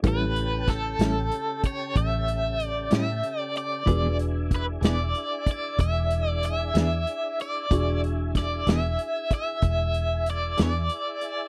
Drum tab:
HH |xxxxxxxxxxxx|xxxxxxxxxxxx|xxxxxxxxxxxx|
SD |--oo-----o--|---o-----o--|--oo-----o--|
BD |o-o--oo-----|o-o--oo-----|o-o--oo-----|